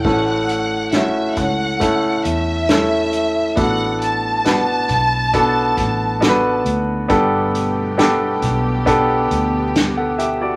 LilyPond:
<<
  \new Staff \with { instrumentName = "Violin section" } { \time 4/4 \key a \mixolydian \tempo 4 = 68 fis''4 e''8 fis''4 e''4. | fis''8 a''2. r8 | r1 | }
  \new Staff \with { instrumentName = "Grand piano" } { \time 4/4 \key a \mixolydian <a cis' e' a'>4 <a cis' e' fis'>4 <a cis' e' a'>4 <a cis' e' a'>4 | <b d' fis' a'>4 <b d' fis' b'>4 <b d' fis' a'>4 <b d' fis' a' b'>4 | <b d' g' a'>4 <b d' g' a'>4 <b d' g' a'>4 r16 <a' fis''>16 <g' e''>16 <fis' d''>16 | }
  \new Staff \with { instrumentName = "Grand piano" } { \clef bass \time 4/4 \key a \mixolydian a,4. r2 r8 | a,4. r2 r8 | g,4. r2 r8 | }
  \new Staff \with { instrumentName = "String section" } { \time 4/4 \key a \mixolydian << { r1 | r1 | <b, g'>1 | } \\ { r1 | r1 | a2 b2 | } >> }
  \new Staff \with { instrumentName = "Fingered electric bass" } { \clef bass \time 4/4 \key a \mixolydian a,,4. cis,4 e,4. | a,,4. b,,4 a,,4 d,8 | g,,4. b,,4 d,4. | }
  \new DrumStaff \with { instrumentName = "Drums" } \drummode { \time 4/4 <cymc bd>8 hh8 <hh sn>8 <hh bd>8 <hh bd>8 hh8 <hh sn>8 hh8 | <hh bd>8 hh8 <hh sn>8 <hh bd>8 <hh bd>8 <hh bd>8 <hh sn>8 hh8 | <hh bd>8 hh8 <hh sn>8 <hh bd>8 <hh bd>8 hh8 <hh sn>8 hh8 | }
>>